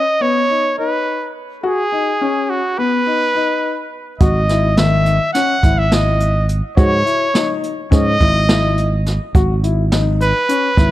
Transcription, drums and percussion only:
4.20 kick, closed hi-hat
4.49 snare, closed hi-hat
4.77 snare, closed hi-hat
5.06 closed hi-hat
5.35 snare, closed hi-hat
5.63 kick, closed hi-hat
5.92 snare, closed hi-hat
6.20 closed hi-hat
6.49 closed hi-hat
6.77 kick, closed hi-hat
7.07 closed hi-hat
7.35 snare, closed hi-hat
7.63 closed hi-hat
7.92 kick, snare, closed hi-hat
8.20 kick, closed hi-hat
8.49 snare, closed hi-hat
8.77 closed hi-hat
9.06 snare, closed hi-hat
9.34 kick, closed hi-hat
9.64 closed hi-hat
9.92 snare, closed hi-hat
10.21 closed hi-hat
10.49 closed hi-hat
10.77 kick, snare, closed hi-hat

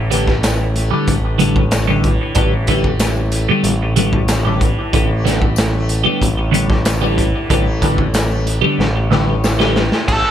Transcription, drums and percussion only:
0.12 closed hi-hat
0.28 kick, snare
0.43 snare, closed hi-hat, tambourine
0.76 closed hi-hat
1.08 kick, closed hi-hat
1.39 closed hi-hat
1.56 kick
1.71 snare, closed hi-hat, tambourine
2.04 kick, closed hi-hat
2.35 kick, closed hi-hat
2.67 kick, closed hi-hat
2.84 kick
3.00 snare, closed hi-hat, tambourine
3.32 closed hi-hat
3.64 closed hi-hat
3.96 closed hi-hat
4.13 kick
4.28 snare, closed hi-hat, tambourine
4.61 kick, closed hi-hat
4.93 kick, closed hi-hat
5.27 snare, closed hi-hat
5.42 kick
5.56 snare, closed hi-hat, tambourine
5.89 closed hi-hat
6.22 kick, closed hi-hat
6.54 closed hi-hat
6.70 kick, snare
6.85 snare, closed hi-hat, tambourine
7.18 kick, closed hi-hat
7.50 kick, closed hi-hat
7.82 kick, closed hi-hat
7.98 kick
8.14 snare, closed hi-hat, tambourine
8.47 closed hi-hat
8.80 snare
9.12 snare
9.44 snare, tambourine
9.60 snare
9.76 snare
9.92 snare
10.08 kick, crash

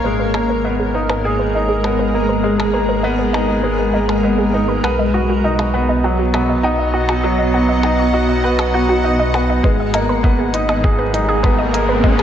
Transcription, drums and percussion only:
0.34 percussion blips
1.09 percussion blips
1.84 percussion blips
2.60 percussion blips
3.34 percussion blips
4.09 percussion blips
4.84 percussion blips
5.59 percussion blips
6.34 percussion blips
7.09 percussion blips
7.83 percussion blips
8.59 percussion blips
9.34 percussion blips
9.64 kick
9.94 closed hi-hat, percussion blips
10.24 kick
10.54 closed hi-hat
10.69 percussion blips
10.84 kick
11.14 closed hi-hat
11.44 kick, percussion blips
11.74 closed hi-hat
12.04 kick
12.19 percussion blips

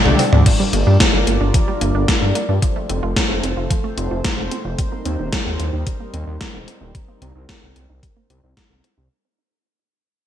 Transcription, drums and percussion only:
0.06 mid tom
0.19 open hi-hat
0.33 mid tom
0.46 kick, closed hi-hat, crash
0.73 closed hi-hat
1.00 kick, snare, closed hi-hat
1.27 closed hi-hat
1.54 kick, closed hi-hat
1.81 closed hi-hat
2.08 kick, snare, closed hi-hat
2.35 closed hi-hat
2.62 kick, closed hi-hat
2.90 closed hi-hat
3.16 kick, snare, closed hi-hat
3.44 closed hi-hat
3.70 kick, closed hi-hat
3.98 closed hi-hat
4.25 kick, snare, closed hi-hat
4.51 closed hi-hat
4.79 kick, closed hi-hat
5.05 closed hi-hat
5.33 kick, snare, closed hi-hat
5.60 closed hi-hat
5.87 kick, closed hi-hat
6.14 closed hi-hat
6.41 kick, snare, closed hi-hat
6.68 closed hi-hat
6.95 kick, closed hi-hat
7.22 closed hi-hat
7.49 kick, snare, closed hi-hat
7.76 closed hi-hat
8.03 kick, closed hi-hat
8.30 closed hi-hat
8.57 kick, snare, closed hi-hat
8.84 closed hi-hat

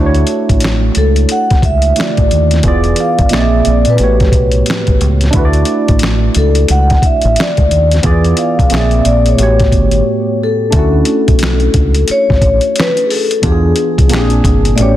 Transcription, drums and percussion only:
0.14 closed hi-hat
0.27 closed hi-hat
0.49 kick, closed hi-hat
0.60 closed hi-hat
0.64 finger snap, snare
0.95 closed hi-hat
1.16 closed hi-hat
1.29 closed hi-hat
1.50 kick, snare, closed hi-hat
1.62 kick, closed hi-hat
1.82 closed hi-hat
1.96 snare, closed hi-hat
2.01 finger snap
2.17 kick, closed hi-hat
2.31 closed hi-hat
2.51 snare, closed hi-hat
2.63 kick, closed hi-hat
2.84 closed hi-hat
2.96 closed hi-hat
3.19 kick, closed hi-hat
3.29 closed hi-hat
3.33 finger snap, snare
3.65 closed hi-hat
3.85 closed hi-hat
3.98 closed hi-hat
4.20 kick, snare, closed hi-hat
4.32 kick, closed hi-hat
4.52 closed hi-hat
4.66 snare, closed hi-hat
4.71 finger snap
4.87 kick, closed hi-hat
5.01 closed hi-hat
5.21 snare, closed hi-hat
5.33 kick, closed hi-hat
5.53 closed hi-hat
5.65 closed hi-hat
5.88 kick, closed hi-hat
5.99 closed hi-hat
6.03 finger snap, snare
6.35 closed hi-hat
6.55 closed hi-hat
6.68 closed hi-hat
6.90 kick, snare, closed hi-hat
7.02 kick, closed hi-hat
7.22 closed hi-hat
7.36 snare, closed hi-hat
7.41 finger snap
7.57 kick, closed hi-hat
7.71 closed hi-hat
7.91 snare, closed hi-hat
8.03 kick, closed hi-hat
8.24 closed hi-hat
8.37 closed hi-hat
8.59 kick, closed hi-hat
8.70 closed hi-hat
8.74 finger snap, snare
8.91 closed hi-hat
9.05 closed hi-hat
9.26 closed hi-hat
9.38 closed hi-hat
9.60 kick, snare, closed hi-hat
9.72 kick, closed hi-hat
9.91 closed hi-hat
10.72 kick, closed hi-hat
11.05 closed hi-hat
11.28 kick, closed hi-hat
11.39 closed hi-hat
11.43 finger snap, snare
11.60 closed hi-hat
11.74 kick, closed hi-hat
11.95 closed hi-hat
12.08 closed hi-hat
12.30 kick, snare
12.41 kick, closed hi-hat
12.61 closed hi-hat
12.76 snare, closed hi-hat
12.80 finger snap
12.97 closed hi-hat
13.10 open hi-hat
13.31 closed hi-hat
13.43 kick, closed hi-hat
13.76 closed hi-hat
13.98 kick, closed hi-hat
14.09 closed hi-hat
14.13 finger snap, snare
14.30 closed hi-hat
14.44 kick, closed hi-hat
14.65 closed hi-hat
14.78 closed hi-hat

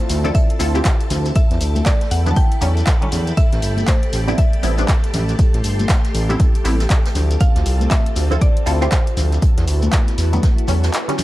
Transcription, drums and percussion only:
0.09 snare, closed hi-hat, open hi-hat, shekere
0.25 closed hi-hat, low conga, shekere
0.34 kick, closed hi-hat, shekere
0.50 closed hi-hat
0.59 closed hi-hat, open hi-hat, shekere
0.75 closed hi-hat, shekere
0.85 kick, snare, clap, closed hi-hat, shekere
1.00 closed hi-hat
1.10 snare, closed hi-hat, open hi-hat, low conga, shekere
1.25 closed hi-hat, shekere
1.35 kick, closed hi-hat, shekere
1.51 snare, closed hi-hat
1.61 closed hi-hat, open hi-hat, shekere
1.76 closed hi-hat, high conga, shekere
1.86 kick, snare, clap, closed hi-hat, shekere
2.01 snare, closed hi-hat
2.11 closed hi-hat, open hi-hat, shekere
2.26 closed hi-hat, low conga, shekere
2.36 kick, closed hi-hat, shekere
2.52 closed hi-hat
2.61 closed hi-hat, open hi-hat, shekere
2.77 closed hi-hat, shekere
2.87 kick, snare, clap, closed hi-hat, shekere
3.02 closed hi-hat
3.12 snare, closed hi-hat, open hi-hat, low conga, shekere
3.27 closed hi-hat, shekere
3.37 kick, closed hi-hat, shekere
3.53 snare, closed hi-hat
3.62 closed hi-hat, open hi-hat, shekere
3.77 closed hi-hat, high conga, shekere
3.87 kick, snare, clap, closed hi-hat, shekere
4.03 closed hi-hat
4.13 snare, closed hi-hat, open hi-hat, shekere
4.28 closed hi-hat, low conga, shekere
4.38 kick, closed hi-hat, shekere
4.53 closed hi-hat
4.63 closed hi-hat, open hi-hat, shekere
4.78 closed hi-hat, shekere
4.88 kick, snare, clap, closed hi-hat, shekere
5.04 closed hi-hat
5.13 snare, closed hi-hat, open hi-hat, low conga, shekere
5.29 closed hi-hat, shekere
5.39 kick, closed hi-hat, shekere
5.54 snare, closed hi-hat
5.64 closed hi-hat, open hi-hat, shekere
5.79 closed hi-hat, high conga, shekere
5.89 kick, snare, clap, closed hi-hat, shekere
6.05 snare, closed hi-hat
6.15 closed hi-hat, open hi-hat, shekere
6.29 closed hi-hat, low conga, shekere
6.39 kick, closed hi-hat, shekere
6.55 closed hi-hat
6.64 snare, closed hi-hat, open hi-hat, shekere
6.80 snare, closed hi-hat, shekere
6.90 kick, snare, clap, closed hi-hat, shekere
7.05 snare, closed hi-hat
7.15 snare, closed hi-hat, open hi-hat, low conga, shekere
7.31 closed hi-hat, shekere
7.40 kick, closed hi-hat, shekere
7.55 snare, closed hi-hat
7.66 closed hi-hat, open hi-hat, shekere
7.81 closed hi-hat, high conga, shekere
7.91 kick, snare, clap, closed hi-hat, shekere
8.06 closed hi-hat
8.16 snare, closed hi-hat, open hi-hat, shekere
8.31 closed hi-hat, low conga, shekere
8.41 kick, closed hi-hat, shekere
8.57 closed hi-hat
8.66 closed hi-hat, open hi-hat, shekere
8.82 closed hi-hat, shekere
8.91 kick, snare, clap, closed hi-hat, shekere
9.07 closed hi-hat
9.17 snare, closed hi-hat, open hi-hat, low conga, shekere
9.32 closed hi-hat, shekere
9.42 kick, closed hi-hat, shekere
9.58 snare, closed hi-hat
9.67 closed hi-hat, open hi-hat, shekere
9.82 closed hi-hat, high conga, shekere
9.92 kick, snare, clap, closed hi-hat, shekere
10.08 snare, closed hi-hat
10.18 snare, closed hi-hat, open hi-hat, shekere
10.33 closed hi-hat, high conga, low conga, shekere
10.43 kick, snare, closed hi-hat, shekere
10.58 closed hi-hat
10.68 snare, closed hi-hat, open hi-hat, shekere
10.84 snare, closed hi-hat, shekere
10.93 clap, closed hi-hat, shekere
11.08 snare, closed hi-hat
11.18 snare, closed hi-hat, open hi-hat, low conga, shekere

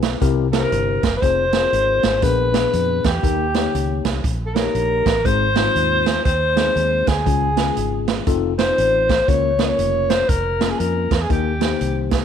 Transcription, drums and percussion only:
0.02 snare, closed hi-hat
0.22 kick, closed hi-hat
0.53 snare, closed hi-hat
0.72 closed hi-hat
1.03 kick, snare, closed hi-hat
1.22 kick, closed hi-hat
1.52 snare, closed hi-hat
1.73 closed hi-hat
2.03 snare, closed hi-hat
2.22 kick, closed hi-hat
2.54 snare, closed hi-hat
2.73 closed hi-hat
3.04 kick, snare, closed hi-hat
3.23 kick, closed hi-hat
3.54 snare, closed hi-hat
3.75 closed hi-hat
4.05 kick, snare, closed hi-hat
4.24 kick, closed hi-hat
4.56 snare, closed hi-hat
4.75 closed hi-hat
5.06 kick, snare, closed hi-hat
5.25 kick, closed hi-hat
5.55 snare, closed hi-hat
5.76 closed hi-hat
6.06 snare, closed hi-hat
6.25 kick, closed hi-hat
6.57 snare, closed hi-hat
6.76 closed hi-hat
7.07 kick, snare, closed hi-hat
7.26 kick, closed hi-hat
7.57 snare, closed hi-hat
7.77 closed hi-hat
8.08 snare, closed hi-hat
8.27 kick, closed hi-hat
8.58 snare, closed hi-hat
8.78 closed hi-hat
9.09 kick, snare, closed hi-hat
9.28 kick, closed hi-hat
9.59 snare, closed hi-hat
9.79 closed hi-hat
10.10 snare, closed hi-hat
10.29 kick, closed hi-hat
10.61 snare, closed hi-hat
10.80 closed hi-hat
11.11 kick, snare, closed hi-hat
11.30 kick, closed hi-hat
11.61 snare, closed hi-hat
11.81 closed hi-hat
12.11 kick, snare, closed hi-hat

